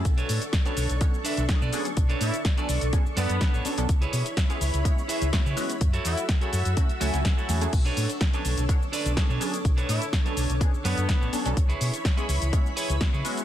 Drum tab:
CC |----------------|----------------|----------------|----------------|
HH |xxoxxxoxx-oxx-ox|xxoxxxoxx-oxx-ox|xxoxxxoxx-oxx-ox|xxoxxxoxxxoxx-ox|
SH |xxxxxxxxxxxxxxxx|xxxxxxxxxxxxxxxx|xxxxxxxxxxxxxxxx|xxxxxxxxxxxxxxxx|
SD |----o-------o---|----o-------o---|----o-------o---|----o------oo---|
BD |o---o---o---o---|o---o---o---o---|o---o---o---o---|o---o---o---o---|

CC |x---------------|----------------|----------------|
HH |xxoxxxoxx-oxx-ox|xxoxxxoxx-oxx-ox|xxoxxxoxx-oxx-ox|
SH |xxxxxxxxxxxxxxxx|xxxxxxxxxxxxxxxx|xxxxxxxxxxxxxxxx|
SD |----o-------o---|----o-------o---|----o-------o---|
BD |o---o---o---o---|o---o---o---o---|o---o---o---o---|